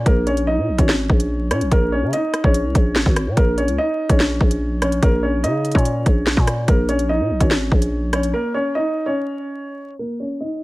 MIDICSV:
0, 0, Header, 1, 4, 480
1, 0, Start_track
1, 0, Key_signature, -5, "minor"
1, 0, Tempo, 413793
1, 70, Time_signature, 4, 2, 24, 8
1, 12337, End_track
2, 0, Start_track
2, 0, Title_t, "Grand piano"
2, 0, Program_c, 0, 0
2, 76, Note_on_c, 0, 70, 86
2, 86, Note_on_c, 0, 58, 75
2, 297, Note_off_c, 0, 70, 0
2, 302, Note_off_c, 0, 58, 0
2, 310, Note_on_c, 0, 73, 84
2, 320, Note_on_c, 0, 61, 68
2, 534, Note_off_c, 0, 73, 0
2, 539, Note_off_c, 0, 61, 0
2, 548, Note_on_c, 0, 75, 83
2, 557, Note_on_c, 0, 63, 69
2, 887, Note_off_c, 0, 75, 0
2, 892, Note_off_c, 0, 63, 0
2, 908, Note_on_c, 0, 73, 69
2, 918, Note_on_c, 0, 61, 58
2, 1702, Note_off_c, 0, 73, 0
2, 1707, Note_off_c, 0, 61, 0
2, 1755, Note_on_c, 0, 73, 82
2, 1765, Note_on_c, 0, 61, 63
2, 1976, Note_off_c, 0, 73, 0
2, 1982, Note_off_c, 0, 61, 0
2, 1988, Note_on_c, 0, 70, 96
2, 1998, Note_on_c, 0, 58, 72
2, 2212, Note_off_c, 0, 70, 0
2, 2218, Note_off_c, 0, 58, 0
2, 2231, Note_on_c, 0, 73, 86
2, 2240, Note_on_c, 0, 61, 70
2, 2454, Note_off_c, 0, 73, 0
2, 2459, Note_off_c, 0, 61, 0
2, 2472, Note_on_c, 0, 75, 90
2, 2481, Note_on_c, 0, 63, 69
2, 2809, Note_off_c, 0, 75, 0
2, 2814, Note_off_c, 0, 63, 0
2, 2831, Note_on_c, 0, 73, 84
2, 2840, Note_on_c, 0, 61, 62
2, 3864, Note_off_c, 0, 73, 0
2, 3868, Note_off_c, 0, 61, 0
2, 3909, Note_on_c, 0, 70, 92
2, 3918, Note_on_c, 0, 58, 67
2, 4133, Note_off_c, 0, 70, 0
2, 4138, Note_off_c, 0, 58, 0
2, 4149, Note_on_c, 0, 73, 81
2, 4159, Note_on_c, 0, 61, 60
2, 4373, Note_off_c, 0, 73, 0
2, 4378, Note_off_c, 0, 61, 0
2, 4389, Note_on_c, 0, 75, 92
2, 4398, Note_on_c, 0, 63, 67
2, 4728, Note_off_c, 0, 75, 0
2, 4732, Note_off_c, 0, 63, 0
2, 4750, Note_on_c, 0, 73, 75
2, 4759, Note_on_c, 0, 61, 64
2, 5543, Note_off_c, 0, 73, 0
2, 5548, Note_off_c, 0, 61, 0
2, 5590, Note_on_c, 0, 73, 77
2, 5599, Note_on_c, 0, 61, 64
2, 5814, Note_off_c, 0, 73, 0
2, 5818, Note_off_c, 0, 61, 0
2, 5833, Note_on_c, 0, 70, 92
2, 5842, Note_on_c, 0, 58, 76
2, 6055, Note_off_c, 0, 70, 0
2, 6060, Note_off_c, 0, 58, 0
2, 6065, Note_on_c, 0, 73, 82
2, 6075, Note_on_c, 0, 61, 61
2, 6291, Note_off_c, 0, 73, 0
2, 6296, Note_off_c, 0, 61, 0
2, 6307, Note_on_c, 0, 75, 93
2, 6316, Note_on_c, 0, 63, 67
2, 6646, Note_off_c, 0, 75, 0
2, 6651, Note_off_c, 0, 63, 0
2, 6665, Note_on_c, 0, 73, 80
2, 6674, Note_on_c, 0, 61, 62
2, 7701, Note_off_c, 0, 73, 0
2, 7705, Note_off_c, 0, 61, 0
2, 7756, Note_on_c, 0, 70, 84
2, 7766, Note_on_c, 0, 58, 73
2, 7977, Note_off_c, 0, 70, 0
2, 7982, Note_off_c, 0, 58, 0
2, 7990, Note_on_c, 0, 73, 83
2, 8000, Note_on_c, 0, 61, 65
2, 8214, Note_off_c, 0, 73, 0
2, 8219, Note_off_c, 0, 61, 0
2, 8228, Note_on_c, 0, 75, 84
2, 8238, Note_on_c, 0, 63, 69
2, 8567, Note_off_c, 0, 75, 0
2, 8572, Note_off_c, 0, 63, 0
2, 8588, Note_on_c, 0, 73, 68
2, 8598, Note_on_c, 0, 61, 59
2, 9383, Note_off_c, 0, 73, 0
2, 9387, Note_off_c, 0, 61, 0
2, 9436, Note_on_c, 0, 73, 80
2, 9445, Note_on_c, 0, 61, 65
2, 9657, Note_off_c, 0, 73, 0
2, 9662, Note_off_c, 0, 61, 0
2, 9670, Note_on_c, 0, 70, 95
2, 9679, Note_on_c, 0, 58, 72
2, 9893, Note_off_c, 0, 70, 0
2, 9898, Note_off_c, 0, 58, 0
2, 9911, Note_on_c, 0, 73, 84
2, 9920, Note_on_c, 0, 61, 72
2, 10134, Note_off_c, 0, 73, 0
2, 10139, Note_off_c, 0, 61, 0
2, 10152, Note_on_c, 0, 75, 89
2, 10161, Note_on_c, 0, 63, 67
2, 10489, Note_off_c, 0, 75, 0
2, 10494, Note_off_c, 0, 63, 0
2, 10511, Note_on_c, 0, 73, 81
2, 10521, Note_on_c, 0, 61, 64
2, 11544, Note_off_c, 0, 73, 0
2, 11549, Note_off_c, 0, 61, 0
2, 11589, Note_on_c, 0, 70, 82
2, 11598, Note_on_c, 0, 58, 62
2, 11813, Note_off_c, 0, 70, 0
2, 11818, Note_off_c, 0, 58, 0
2, 11830, Note_on_c, 0, 73, 71
2, 11840, Note_on_c, 0, 61, 57
2, 12054, Note_off_c, 0, 73, 0
2, 12059, Note_off_c, 0, 61, 0
2, 12069, Note_on_c, 0, 75, 86
2, 12078, Note_on_c, 0, 63, 61
2, 12337, Note_off_c, 0, 63, 0
2, 12337, Note_off_c, 0, 75, 0
2, 12337, End_track
3, 0, Start_track
3, 0, Title_t, "808-style bass"
3, 0, Program_c, 1, 38
3, 70, Note_on_c, 1, 34, 115
3, 670, Note_on_c, 1, 46, 101
3, 687, Note_off_c, 1, 34, 0
3, 790, Note_on_c, 1, 34, 102
3, 807, Note_off_c, 1, 46, 0
3, 904, Note_off_c, 1, 34, 0
3, 910, Note_on_c, 1, 32, 102
3, 1255, Note_off_c, 1, 32, 0
3, 1271, Note_on_c, 1, 34, 105
3, 1750, Note_on_c, 1, 46, 99
3, 1767, Note_off_c, 1, 34, 0
3, 1870, Note_on_c, 1, 34, 97
3, 1888, Note_off_c, 1, 46, 0
3, 1984, Note_off_c, 1, 34, 0
3, 1990, Note_on_c, 1, 34, 113
3, 2350, Note_on_c, 1, 49, 107
3, 2367, Note_off_c, 1, 34, 0
3, 2463, Note_off_c, 1, 49, 0
3, 2830, Note_on_c, 1, 34, 108
3, 3070, Note_on_c, 1, 36, 99
3, 3087, Note_off_c, 1, 34, 0
3, 3184, Note_off_c, 1, 36, 0
3, 3190, Note_on_c, 1, 34, 106
3, 3430, Note_on_c, 1, 32, 106
3, 3447, Note_off_c, 1, 34, 0
3, 3544, Note_off_c, 1, 32, 0
3, 3550, Note_on_c, 1, 32, 109
3, 3790, Note_on_c, 1, 46, 99
3, 3807, Note_off_c, 1, 32, 0
3, 3904, Note_off_c, 1, 46, 0
3, 3910, Note_on_c, 1, 34, 112
3, 4270, Note_on_c, 1, 37, 99
3, 4287, Note_off_c, 1, 34, 0
3, 4384, Note_off_c, 1, 37, 0
3, 4750, Note_on_c, 1, 34, 100
3, 5095, Note_off_c, 1, 34, 0
3, 5110, Note_on_c, 1, 34, 103
3, 5801, Note_off_c, 1, 34, 0
3, 5830, Note_on_c, 1, 34, 111
3, 6310, Note_on_c, 1, 49, 101
3, 6327, Note_off_c, 1, 34, 0
3, 6652, Note_off_c, 1, 49, 0
3, 6670, Note_on_c, 1, 46, 104
3, 7015, Note_off_c, 1, 46, 0
3, 7030, Note_on_c, 1, 34, 103
3, 7376, Note_off_c, 1, 34, 0
3, 7390, Note_on_c, 1, 46, 107
3, 7735, Note_off_c, 1, 46, 0
3, 7750, Note_on_c, 1, 34, 110
3, 8350, Note_on_c, 1, 46, 99
3, 8367, Note_off_c, 1, 34, 0
3, 8470, Note_on_c, 1, 34, 102
3, 8487, Note_off_c, 1, 46, 0
3, 8584, Note_off_c, 1, 34, 0
3, 8590, Note_on_c, 1, 32, 105
3, 8935, Note_off_c, 1, 32, 0
3, 8950, Note_on_c, 1, 34, 106
3, 9670, Note_off_c, 1, 34, 0
3, 12337, End_track
4, 0, Start_track
4, 0, Title_t, "Drums"
4, 70, Note_on_c, 9, 36, 114
4, 70, Note_on_c, 9, 42, 80
4, 186, Note_off_c, 9, 36, 0
4, 186, Note_off_c, 9, 42, 0
4, 310, Note_on_c, 9, 42, 59
4, 426, Note_off_c, 9, 42, 0
4, 430, Note_on_c, 9, 42, 58
4, 546, Note_off_c, 9, 42, 0
4, 910, Note_on_c, 9, 36, 94
4, 910, Note_on_c, 9, 42, 81
4, 1026, Note_off_c, 9, 36, 0
4, 1026, Note_off_c, 9, 42, 0
4, 1031, Note_on_c, 9, 38, 117
4, 1147, Note_off_c, 9, 38, 0
4, 1271, Note_on_c, 9, 36, 99
4, 1387, Note_off_c, 9, 36, 0
4, 1390, Note_on_c, 9, 42, 81
4, 1506, Note_off_c, 9, 42, 0
4, 1750, Note_on_c, 9, 42, 90
4, 1751, Note_on_c, 9, 37, 98
4, 1866, Note_off_c, 9, 42, 0
4, 1867, Note_off_c, 9, 37, 0
4, 1870, Note_on_c, 9, 42, 71
4, 1986, Note_off_c, 9, 42, 0
4, 1990, Note_on_c, 9, 36, 119
4, 1990, Note_on_c, 9, 42, 79
4, 2106, Note_off_c, 9, 36, 0
4, 2106, Note_off_c, 9, 42, 0
4, 2470, Note_on_c, 9, 42, 91
4, 2586, Note_off_c, 9, 42, 0
4, 2709, Note_on_c, 9, 37, 93
4, 2710, Note_on_c, 9, 42, 70
4, 2825, Note_off_c, 9, 37, 0
4, 2826, Note_off_c, 9, 42, 0
4, 2830, Note_on_c, 9, 36, 95
4, 2946, Note_off_c, 9, 36, 0
4, 2950, Note_on_c, 9, 42, 88
4, 3066, Note_off_c, 9, 42, 0
4, 3190, Note_on_c, 9, 36, 100
4, 3190, Note_on_c, 9, 42, 80
4, 3306, Note_off_c, 9, 36, 0
4, 3306, Note_off_c, 9, 42, 0
4, 3429, Note_on_c, 9, 38, 109
4, 3545, Note_off_c, 9, 38, 0
4, 3550, Note_on_c, 9, 36, 99
4, 3666, Note_off_c, 9, 36, 0
4, 3670, Note_on_c, 9, 37, 100
4, 3670, Note_on_c, 9, 42, 89
4, 3786, Note_off_c, 9, 37, 0
4, 3786, Note_off_c, 9, 42, 0
4, 3910, Note_on_c, 9, 36, 115
4, 3910, Note_on_c, 9, 42, 79
4, 4026, Note_off_c, 9, 36, 0
4, 4026, Note_off_c, 9, 42, 0
4, 4150, Note_on_c, 9, 42, 57
4, 4266, Note_off_c, 9, 42, 0
4, 4270, Note_on_c, 9, 42, 57
4, 4386, Note_off_c, 9, 42, 0
4, 4750, Note_on_c, 9, 36, 94
4, 4750, Note_on_c, 9, 42, 81
4, 4866, Note_off_c, 9, 36, 0
4, 4866, Note_off_c, 9, 42, 0
4, 4871, Note_on_c, 9, 38, 117
4, 4987, Note_off_c, 9, 38, 0
4, 5110, Note_on_c, 9, 36, 98
4, 5226, Note_off_c, 9, 36, 0
4, 5230, Note_on_c, 9, 42, 82
4, 5346, Note_off_c, 9, 42, 0
4, 5590, Note_on_c, 9, 37, 102
4, 5590, Note_on_c, 9, 42, 88
4, 5706, Note_off_c, 9, 37, 0
4, 5706, Note_off_c, 9, 42, 0
4, 5710, Note_on_c, 9, 42, 74
4, 5826, Note_off_c, 9, 42, 0
4, 5830, Note_on_c, 9, 36, 118
4, 5830, Note_on_c, 9, 42, 83
4, 5946, Note_off_c, 9, 36, 0
4, 5946, Note_off_c, 9, 42, 0
4, 6310, Note_on_c, 9, 42, 91
4, 6426, Note_off_c, 9, 42, 0
4, 6550, Note_on_c, 9, 42, 59
4, 6630, Note_off_c, 9, 42, 0
4, 6630, Note_on_c, 9, 42, 57
4, 6670, Note_on_c, 9, 36, 93
4, 6710, Note_off_c, 9, 42, 0
4, 6710, Note_on_c, 9, 42, 61
4, 6786, Note_off_c, 9, 36, 0
4, 6790, Note_off_c, 9, 42, 0
4, 6790, Note_on_c, 9, 42, 86
4, 6906, Note_off_c, 9, 42, 0
4, 7029, Note_on_c, 9, 42, 79
4, 7030, Note_on_c, 9, 36, 102
4, 7145, Note_off_c, 9, 42, 0
4, 7146, Note_off_c, 9, 36, 0
4, 7268, Note_on_c, 9, 38, 107
4, 7384, Note_off_c, 9, 38, 0
4, 7390, Note_on_c, 9, 36, 98
4, 7506, Note_off_c, 9, 36, 0
4, 7509, Note_on_c, 9, 42, 91
4, 7510, Note_on_c, 9, 37, 105
4, 7625, Note_off_c, 9, 42, 0
4, 7626, Note_off_c, 9, 37, 0
4, 7749, Note_on_c, 9, 42, 83
4, 7750, Note_on_c, 9, 36, 118
4, 7865, Note_off_c, 9, 42, 0
4, 7866, Note_off_c, 9, 36, 0
4, 7989, Note_on_c, 9, 42, 58
4, 8105, Note_off_c, 9, 42, 0
4, 8109, Note_on_c, 9, 42, 57
4, 8225, Note_off_c, 9, 42, 0
4, 8590, Note_on_c, 9, 36, 93
4, 8590, Note_on_c, 9, 42, 82
4, 8706, Note_off_c, 9, 36, 0
4, 8706, Note_off_c, 9, 42, 0
4, 8710, Note_on_c, 9, 38, 114
4, 8826, Note_off_c, 9, 38, 0
4, 8950, Note_on_c, 9, 36, 97
4, 9066, Note_off_c, 9, 36, 0
4, 9070, Note_on_c, 9, 42, 82
4, 9186, Note_off_c, 9, 42, 0
4, 9430, Note_on_c, 9, 37, 103
4, 9430, Note_on_c, 9, 42, 85
4, 9546, Note_off_c, 9, 37, 0
4, 9546, Note_off_c, 9, 42, 0
4, 9550, Note_on_c, 9, 42, 73
4, 9666, Note_off_c, 9, 42, 0
4, 11950, Note_on_c, 9, 42, 79
4, 12066, Note_off_c, 9, 42, 0
4, 12337, End_track
0, 0, End_of_file